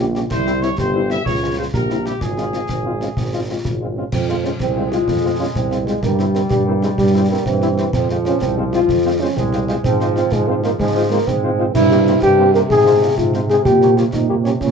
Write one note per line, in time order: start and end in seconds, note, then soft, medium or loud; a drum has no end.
0.00 0.23 A#1 medium
0.00 0.27 F4 medium
0.15 0.20 G3 medium
0.15 0.20 C#4 medium
0.15 0.21 G4 medium
0.15 snare medium
0.31 0.71 C2 medium
0.31 0.75 E4 medium
0.31 0.60 C5 loud
0.31 concert bass drum medium
0.31 snare medium
0.31 crash soft
0.47 0.52 G3 medium
0.47 0.52 C4 medium
0.47 0.52 E4 medium
0.47 snare medium
0.62 0.68 G3 medium
0.62 0.68 C4 medium
0.62 0.68 E4 medium
0.62 0.78 C#5 medium
0.62 snare soft
0.78 1.18 G1 medium
0.78 1.23 G4 medium
0.78 1.10 C5 medium
0.78 concert bass drum medium
0.78 snare medium
0.94 1.00 G3 medium
0.94 1.00 C4 medium
0.94 1.00 E4 medium
1.10 1.16 G3 medium
1.10 1.16 C4 medium
1.10 1.16 E4 medium
1.10 1.25 E5 loud
1.10 snare soft
1.25 1.66 C#2 medium
1.25 1.61 F4 medium
1.25 1.55 C#5 medium
1.25 concert bass drum medium
1.25 snare medium
1.42 1.48 F3 medium
1.42 1.48 G#3 medium
1.42 1.48 F4 medium
1.58 1.64 F3 soft
1.58 1.64 G#3 medium
1.58 1.64 F4 medium
1.58 1.65 C5 medium
1.74 2.13 A#1 medium
1.74 2.23 G4 medium
1.74 2.04 A#4 medium
1.74 concert bass drum medium
1.74 snare medium
1.90 1.96 G3 medium
1.90 1.96 C4 soft
1.90 1.96 E4 medium
1.90 snare soft
2.06 2.12 G3 soft
2.06 2.12 C4 soft
2.06 2.12 E4 medium
2.06 2.21 G4 medium
2.06 snare medium
2.21 2.61 G#1 medium
2.21 2.66 F4 medium
2.21 3.61 G#4 medium
2.21 concert bass drum medium
2.21 snare medium
2.37 2.44 G#3 medium
2.37 2.44 C4 soft
2.37 2.44 F4 soft
2.37 snare soft
2.53 2.60 G#3 soft
2.53 2.60 C4 soft
2.53 2.60 F4 soft
2.53 snare soft
2.69 3.09 G#1 medium
2.69 2.84 C4 medium
2.69 concert bass drum medium
2.69 snare medium
2.86 2.91 G#3 soft
2.86 2.92 C4 soft
2.86 2.91 F4 soft
3.01 3.07 G#3 soft
3.01 3.07 C4 soft
3.01 3.08 C#4 medium
3.01 3.07 F4 soft
3.01 snare medium
3.17 3.57 G#1 medium
3.17 3.31 C4 medium
3.17 concert bass drum medium
3.17 snare medium
3.33 3.39 G#3 medium
3.33 3.39 C4 soft
3.33 3.39 F4 soft
3.49 3.55 G#3 soft
3.49 3.55 C4 soft
3.49 3.93 F4 medium
3.49 3.55 F4 soft
3.65 4.04 G#1 medium
3.65 concert bass drum medium
3.65 snare medium
3.81 3.87 G#3 soft
3.81 3.87 C4 soft
3.81 3.87 F4 soft
3.97 4.03 G#3 soft
3.97 4.03 C4 soft
3.97 4.04 C#4 medium
3.97 4.03 F4 soft
4.12 4.52 F2 medium
4.12 4.58 F3 medium
4.12 4.27 C4 medium
4.12 concert bass drum medium
4.12 snare medium
4.12 crash medium
4.29 4.35 G#3 medium
4.29 4.35 C4 medium
4.29 4.35 F4 medium
4.29 4.34 C5 medium
4.29 snare soft
4.44 4.50 G#3 medium
4.44 4.50 C4 medium
4.44 4.51 C#4 medium
4.44 4.50 F4 medium
4.44 4.51 C5 soft
4.44 snare medium
4.60 5.00 C2 medium
4.60 6.04 G#3 medium
4.60 4.90 C4 medium
4.60 concert bass drum medium
4.60 snare medium
4.76 4.82 G#3 medium
4.76 4.82 C4 medium
4.76 4.82 F4 medium
4.76 4.82 C5 soft
4.91 4.98 G#3 medium
4.91 4.98 C4 medium
4.91 5.36 F4 medium
4.91 4.98 F4 medium
4.91 4.98 C5 medium
4.91 snare medium
5.08 5.48 F2 medium
5.08 concert bass drum medium
5.08 snare medium
5.24 5.30 G#3 medium
5.24 5.30 C4 medium
5.24 5.30 F4 medium
5.24 5.30 C5 medium
5.39 5.45 G#3 medium
5.39 5.45 C4 medium
5.39 5.46 C#4 medium
5.39 5.45 F4 medium
5.39 5.45 C5 medium
5.55 5.95 C2 medium
5.55 5.88 C4 medium
5.55 concert bass drum medium
5.55 snare medium
5.71 5.77 G#3 medium
5.71 5.77 C4 medium
5.71 5.77 F4 medium
5.71 5.77 C5 medium
5.71 snare soft
5.86 6.02 G#3 medium
5.86 5.93 G#3 medium
5.86 5.93 C4 medium
5.86 5.93 F4 medium
5.86 5.93 C5 medium
5.86 snare soft
6.02 6.43 G2 medium
6.02 7.42 G3 medium
6.02 6.17 A#3 medium
6.02 concert bass drum medium
6.02 snare medium
6.19 6.25 G3 medium
6.19 6.25 C4 medium
6.19 6.25 E4 medium
6.19 6.25 C5 medium
6.19 snare medium
6.34 6.41 G3 medium
6.34 6.42 A#3 medium
6.34 6.41 C4 medium
6.34 6.41 E4 medium
6.34 6.40 C5 medium
6.34 snare medium
6.50 6.90 G2 medium
6.50 6.65 G3 medium
6.50 concert bass drum medium
6.50 snare medium
6.66 6.73 G3 medium
6.66 6.81 A#3 medium
6.66 6.73 C4 medium
6.66 6.73 E4 medium
6.66 6.73 C5 medium
6.82 6.88 G3 medium
6.82 6.90 G#3 medium
6.82 6.88 C4 medium
6.82 6.89 E4 medium
6.82 6.89 C5 medium
6.82 snare medium
6.98 7.38 G2 medium
6.98 7.28 G3 medium
6.98 concert bass drum medium
6.98 snare medium
7.14 7.20 G3 medium
7.14 7.20 C4 medium
7.14 7.20 E4 medium
7.14 7.21 C5 medium
7.30 7.36 G3 medium
7.30 7.45 A#3 medium
7.30 7.36 C4 medium
7.30 7.36 E4 medium
7.30 7.37 C5 medium
7.45 7.86 G2 medium
7.45 7.93 E3 medium
7.45 7.91 C4 medium
7.45 concert bass drum medium
7.45 snare medium
7.62 7.68 G3 medium
7.62 7.68 C4 medium
7.62 7.68 E4 medium
7.62 7.69 C5 medium
7.62 snare soft
7.78 7.84 G3 medium
7.78 7.84 C4 medium
7.78 7.84 E4 medium
7.78 7.84 C5 medium
7.78 snare medium
7.93 8.34 F2 medium
7.93 9.33 F3 medium
7.93 8.08 C4 medium
7.93 concert bass drum medium
7.93 snare medium
7.93 crash soft
8.09 8.16 G#3 medium
8.09 8.16 C4 medium
8.09 8.16 F4 medium
8.09 8.15 C5 medium
8.09 snare medium
8.25 8.32 G#3 medium
8.25 8.32 C4 medium
8.25 8.40 C#4 medium
8.25 8.32 F4 medium
8.25 8.32 C5 medium
8.25 snare medium
8.41 8.81 C2 medium
8.41 8.55 C4 loud
8.41 concert bass drum medium
8.41 snare medium
8.57 8.63 G#3 medium
8.57 8.63 C4 medium
8.57 8.63 F4 medium
8.57 8.63 C5 medium
8.73 8.79 G#3 medium
8.73 8.79 C4 medium
8.73 9.22 F4 loud
8.73 8.79 F4 medium
8.73 8.80 C5 medium
8.73 snare medium
8.89 9.29 F2 medium
8.89 concert bass drum medium
8.89 snare medium
9.05 9.11 G#3 medium
9.05 9.11 C4 medium
9.05 9.11 F4 medium
9.05 9.11 C5 medium
9.20 9.27 G#3 medium
9.20 9.27 C4 medium
9.20 9.38 C#4 medium
9.20 9.27 F4 medium
9.20 9.26 C5 medium
9.36 9.76 C2 medium
9.36 9.81 G#3 medium
9.36 9.68 C4 medium
9.36 concert bass drum medium
9.36 snare medium
9.53 9.59 G#3 medium
9.53 9.59 C4 medium
9.53 9.59 F4 medium
9.53 9.58 C5 medium
9.53 snare medium
9.68 9.76 G#3 medium
9.68 9.75 G#3 medium
9.68 9.74 C4 medium
9.68 9.74 F4 medium
9.68 9.74 C5 medium
9.68 snare medium
9.84 10.24 G#2 medium
9.84 10.76 F3 medium
9.84 10.14 C4 loud
9.84 concert bass drum medium
9.84 snare medium
10.00 10.06 G#3 medium
10.00 10.06 C4 medium
10.00 10.06 F4 medium
10.00 10.06 C5 medium
10.00 snare soft
10.16 10.22 G#3 medium
10.16 10.22 C4 medium
10.16 10.34 C4 medium
10.16 10.22 F4 medium
10.16 10.22 C5 medium
10.16 snare medium
10.32 10.72 G#2 medium
10.32 10.50 G#3 loud
10.32 concert bass drum medium
10.32 snare medium
10.48 10.54 G#3 medium
10.48 10.54 C4 medium
10.48 10.63 C4 medium
10.48 10.54 F4 medium
10.48 10.54 C5 medium
10.64 10.69 G#3 medium
10.64 10.71 A#3 loud
10.64 10.69 C4 medium
10.64 10.69 F4 medium
10.64 10.70 C5 medium
10.64 snare medium
10.79 11.19 G#2 medium
10.79 11.24 F3 medium
10.79 11.09 G#3 medium
10.79 concert bass drum medium
10.79 snare medium
10.95 11.01 G#3 medium
10.95 11.01 C4 medium
10.95 11.01 F4 medium
10.95 11.01 C5 medium
11.11 11.17 G#3 medium
11.11 11.28 A#3 medium
11.11 11.17 C4 medium
11.11 11.17 F4 medium
11.11 11.17 C5 medium
11.27 11.67 G#2 medium
11.27 11.62 G#3 medium
11.27 11.73 C4 loud
11.27 concert bass drum medium
11.27 snare medium
11.43 11.49 G#3 medium
11.43 11.49 C4 medium
11.43 11.49 F4 medium
11.43 11.49 C5 medium
11.59 11.65 G#3 medium
11.59 11.65 C4 medium
11.59 11.65 F4 medium
11.59 11.65 C5 medium
11.74 12.15 G2 medium
11.74 14.57 C3 medium
11.74 12.19 E4 loud
11.74 concert bass drum medium
11.74 snare medium
11.74 crash medium
11.91 11.97 A#3 medium
11.91 11.97 C4 medium
11.91 11.97 G4 medium
11.91 11.97 C5 medium
11.91 snare medium
12.07 12.13 A#3 medium
12.07 12.13 C4 medium
12.07 12.13 G4 medium
12.07 12.13 C5 medium
12.07 snare medium
12.22 12.62 G2 medium
12.22 12.52 G4 loud
12.22 concert bass drum medium
12.22 snare medium
12.39 12.45 A#3 medium
12.39 12.45 C4 medium
12.39 12.45 G4 medium
12.39 12.44 C5 medium
12.54 12.60 A#3 medium
12.54 12.61 C4 medium
12.54 12.61 G4 medium
12.54 12.61 A#4 loud
12.54 12.60 C5 medium
12.54 snare soft
12.69 13.10 G#2 medium
12.69 13.14 G#4 loud
12.69 concert bass drum medium
12.69 snare medium
12.86 12.92 G#3 medium
12.86 12.92 C4 medium
12.86 12.92 F4 medium
12.86 12.92 C5 medium
13.02 13.08 G#3 medium
13.02 13.08 C4 medium
13.02 13.08 F4 medium
13.02 13.08 C5 medium
13.18 13.58 G#2 medium
13.18 13.32 F4 loud
13.18 concert bass drum medium
13.18 snare medium
13.34 13.40 G#3 medium
13.34 13.40 C4 medium
13.34 13.40 F4 medium
13.34 13.40 C5 medium
13.34 snare soft
13.49 13.56 G#3 medium
13.49 13.56 C4 medium
13.49 13.56 F4 medium
13.49 13.64 G#4 loud
13.49 13.55 C5 medium
13.49 snare medium
13.65 14.05 A#2 medium
13.65 13.95 G4 loud
13.65 concert bass drum medium
13.65 snare medium
13.82 13.88 G3 medium
13.82 13.87 A#3 medium
13.82 13.87 G4 medium
13.82 13.88 C#5 medium
13.82 snare soft
13.97 14.03 G3 medium
13.97 14.03 A#3 medium
13.97 14.04 F4 medium
13.97 14.03 G4 medium
13.97 14.03 C#5 medium
13.97 snare medium
14.13 14.53 A#2 medium
14.13 14.28 D#4 medium
14.13 concert bass drum medium
14.13 snare medium
14.29 14.35 G3 medium
14.29 14.35 A#3 medium
14.29 14.35 G4 medium
14.29 14.35 C#5 medium
14.44 14.51 G3 medium
14.44 14.51 A#3 medium
14.44 14.52 C#4 medium
14.44 14.51 G4 medium
14.44 14.50 C#5 medium
14.44 snare medium
14.60 14.71 A#2 medium
14.60 14.71 C#3 medium
14.60 14.71 C#4 medium
14.60 concert bass drum medium
14.60 snare medium